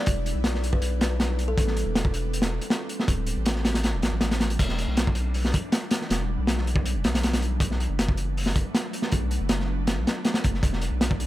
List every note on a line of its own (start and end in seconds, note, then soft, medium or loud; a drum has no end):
0.00 1.55 G3 medium
0.00 1.53 B3 medium
0.00 3.04 D4 medium
0.00 1.55 E4 medium
0.00 0.10 D5 medium
0.06 0.34 E1 loud
0.06 kick loud
0.06 closed hi-hat medium
0.26 closed hi-hat medium
0.35 0.80 B1 medium
0.44 snare loud
0.44 closed hi-hat medium
0.55 snare soft
0.64 closed hi-hat medium
0.73 0.95 B4 medium
0.73 kick medium
0.82 1.56 B1 loud
0.82 closed hi-hat medium
1.01 snare loud
1.01 closed hi-hat medium
1.20 snare loud
1.20 closed hi-hat medium
1.39 closed hi-hat medium
1.48 1.61 A4 medium
1.58 1.84 A1 loud
1.58 3.07 G3 medium
1.58 3.07 B3 medium
1.58 4.56 C4 medium
1.58 kick loud
1.58 closed hi-hat medium
1.67 snare soft
1.77 closed hi-hat medium
1.86 2.60 E1 medium
1.95 snare loud
1.95 closed hi-hat medium
2.05 kick loud
2.14 closed hi-hat medium
2.33 closed hi-hat medium
2.42 snare loud
2.42 closed hi-hat medium
2.61 closed hi-hat medium
2.70 snare loud
2.70 closed hi-hat medium
2.89 closed hi-hat medium
3.00 snare medium
3.08 3.35 D1 loud
3.08 4.58 F#3 medium
3.08 4.58 A3 medium
3.08 4.58 D4 medium
3.08 kick loud
3.08 closed hi-hat medium
3.27 closed hi-hat medium
3.37 3.95 A1 medium
3.46 snare loud
3.46 closed hi-hat medium
3.56 snare soft
3.65 snare loud
3.65 closed hi-hat medium
3.74 snare loud
3.74 closed hi-hat medium
3.84 snare loud
3.84 closed hi-hat medium
3.93 4.02 D1 medium
4.02 4.11 A1 medium
4.02 snare loud
4.02 closed hi-hat medium
4.12 4.58 A1 medium
4.21 snare loud
4.21 closed hi-hat medium
4.31 snare loud
4.31 closed hi-hat medium
4.40 snare loud
4.40 closed hi-hat medium
4.50 closed hi-hat medium
4.59 4.86 E1 loud
4.59 7.58 E3 medium
4.59 7.58 G3 medium
4.59 11.27 B3 medium
4.59 7.58 D4 medium
4.59 kick loud
4.59 closed hi-hat medium
4.59 crash medium
4.69 snare soft
4.78 closed hi-hat medium
4.88 5.62 B1 medium
4.97 snare loud
4.97 closed hi-hat medium
5.07 kick medium
5.15 closed hi-hat medium
5.34 open hi-hat medium
5.45 snare medium
5.54 kick loud
5.54 closed hi-hat medium
5.72 snare loud
5.72 closed hi-hat medium
5.91 snare loud
5.91 closed hi-hat medium
6.01 snare medium
6.10 6.37 E1 loud
6.10 snare loud
6.10 closed hi-hat medium
6.39 6.97 B1 medium
6.47 snare loud
6.47 closed hi-hat medium
6.58 snare soft
6.67 closed hi-hat medium
6.76 kick loud
6.86 closed hi-hat loud
6.95 7.04 E1 medium
7.04 7.13 B1 medium
7.04 snare loud
7.04 closed hi-hat medium
7.14 7.60 B1 loud
7.14 snare loud
7.14 closed hi-hat medium
7.23 snare loud
7.23 closed hi-hat medium
7.33 snare loud
7.33 closed hi-hat medium
7.42 closed hi-hat medium
7.60 7.88 B1 loud
7.60 10.60 F#3 medium
7.60 10.60 A3 medium
7.60 11.27 D4 medium
7.60 kick loud
7.60 closed hi-hat medium
7.71 snare soft
7.80 closed hi-hat medium
7.90 8.64 F#1 medium
7.99 snare loud
7.99 closed hi-hat medium
8.09 kick loud
8.17 closed hi-hat medium
8.37 open hi-hat medium
8.46 snare medium
8.56 kick loud
8.56 closed hi-hat medium
8.75 snare loud
8.75 closed hi-hat medium
8.93 closed hi-hat medium
9.02 snare medium
9.12 9.39 B1 loud
9.12 kick loud
9.12 closed hi-hat medium
9.31 closed hi-hat medium
9.41 9.99 F#1 medium
9.49 snare loud
9.49 closed hi-hat medium
9.60 snare soft
9.87 snare loud
9.87 closed hi-hat medium
9.97 10.06 B1 loud
10.07 snare loud
10.07 closed hi-hat medium
10.25 snare loud
10.25 closed hi-hat medium
10.34 snare loud
10.34 closed hi-hat medium
10.44 10.61 F#1 medium
10.44 kick loud
10.44 closed hi-hat medium
10.54 snare soft
10.63 10.90 E1 loud
10.63 11.27 E3 medium
10.63 11.27 G3 medium
10.63 kick loud
10.63 closed hi-hat medium
10.73 snare soft
10.81 closed hi-hat medium
10.91 11.27 B1 medium
11.01 snare loud
11.01 closed hi-hat medium
11.11 kick loud
11.20 closed hi-hat medium